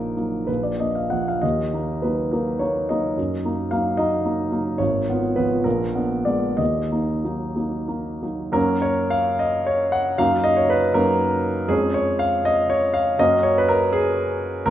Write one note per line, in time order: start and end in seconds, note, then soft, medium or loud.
0.00 0.48 A#1 soft
0.00 0.13 A#3 soft
0.00 0.14 D#4 soft
0.00 0.47 A#4 soft
0.17 0.45 F#3 soft
0.17 0.45 A#3 soft
0.17 0.45 D#4 soft
0.47 0.78 A#1 soft
0.47 0.63 B4 soft
0.63 0.79 D5 soft
0.80 1.09 A#3 soft
0.80 1.09 D4 soft
0.80 0.95 D#5 soft
0.95 1.11 F5 soft
1.10 1.39 F3 soft
1.10 1.39 A#3 soft
1.10 1.40 D4 soft
1.10 1.26 F#5 soft
1.28 1.43 F5 soft
1.42 1.72 D#2 soft
1.42 2.02 D#5 medium
1.73 2.00 A#3 soft
1.73 2.00 D#4 soft
2.02 2.29 F#3 soft
2.02 2.29 A#3 soft
2.02 2.30 D#4 soft
2.02 2.32 B4 soft
2.31 2.58 F#3 soft
2.31 2.58 A#3 soft
2.31 2.58 D#4 soft
2.31 2.60 A#4 soft
2.59 2.86 A#3 soft
2.59 2.86 D#4 soft
2.59 2.88 C#5 medium
2.89 3.14 F#3 soft
2.89 3.15 A#3 soft
2.89 3.15 D#4 soft
2.89 3.71 D#5 soft
3.18 3.44 F#2 soft
3.45 3.69 A#3 soft
3.45 3.69 D#4 soft
3.71 3.95 F#3 soft
3.71 3.95 A#3 soft
3.71 3.95 D#4 soft
3.71 3.97 F5 medium
3.97 4.21 F#3 soft
3.97 4.22 A#3 soft
3.97 4.22 D#4 soft
3.97 4.79 D#5 medium
4.25 4.49 A#3 soft
4.25 4.49 D#4 soft
4.52 4.77 F#3 soft
4.52 4.77 A#3 soft
4.52 4.77 D#4 soft
4.78 5.07 G#1 soft
4.78 5.36 C#5 medium
5.10 5.34 B3 soft
5.10 5.34 F4 soft
5.36 5.63 F3 soft
5.36 5.62 B3 soft
5.36 5.62 F4 soft
5.36 5.65 B4 medium
5.64 5.94 A#1 soft
5.64 6.26 A#4 medium
5.95 6.23 B3 soft
5.95 6.23 D4 soft
6.25 6.56 G#3 soft
6.25 6.56 B3 soft
6.25 6.56 D4 soft
6.25 6.58 D5 medium
6.57 6.91 D#2 soft
6.57 8.23 D#5 medium
6.92 7.22 A#3 soft
6.92 7.22 D#4 soft
7.24 7.53 F#3 soft
7.24 7.54 A#3 soft
7.24 7.54 D#4 soft
7.56 7.85 F#3 soft
7.56 7.85 A#3 soft
7.56 7.86 D#4 soft
7.88 8.19 A#3 soft
7.88 8.20 D#4 soft
8.22 8.51 F#3 soft
8.22 8.51 A#3 soft
8.22 8.52 D#4 soft
8.52 10.12 F#2 soft
8.52 10.12 F#3 soft
8.52 10.12 A#3 soft
8.52 10.13 C#4 soft
8.52 8.83 A#4 medium
8.82 9.11 C#5 medium
9.10 9.39 F5 medium
9.39 9.66 D#5 soft
9.66 9.92 C#5 medium
9.92 10.18 F#5 medium
10.18 10.93 F#2 soft
10.18 10.93 F#3 soft
10.18 10.93 A#3 soft
10.18 10.93 D#4 soft
10.18 10.44 F5 medium
10.44 10.56 D#5 medium
10.57 10.69 C#5 medium
10.70 10.95 B4 medium
10.94 11.67 F#2 soft
10.94 11.67 F#3 soft
10.94 11.67 A#3 soft
10.94 11.67 D#4 soft
10.94 11.69 A#4 medium
11.68 13.15 F2 soft
11.68 13.15 G#3 soft
11.68 13.15 C#4 soft
11.68 11.94 G#4 medium
11.94 12.20 C#5 medium
12.19 12.45 F5 medium
12.45 12.70 D#5 medium
12.70 12.94 C#5 medium
12.94 13.19 F5 medium
13.19 14.63 F#2 soft
13.19 14.63 A#3 soft
13.19 14.63 C#4 soft
13.19 14.63 F#4 soft
13.19 13.45 D#5 medium
13.43 13.57 C#5 medium
13.58 13.70 B4 medium
13.69 13.93 A#4 medium
13.93 14.67 G#4 medium
14.66 14.70 D2 soft
14.66 14.70 G#3 soft
14.66 14.70 A#3 soft
14.66 14.70 F4 soft
14.66 14.70 A#4 medium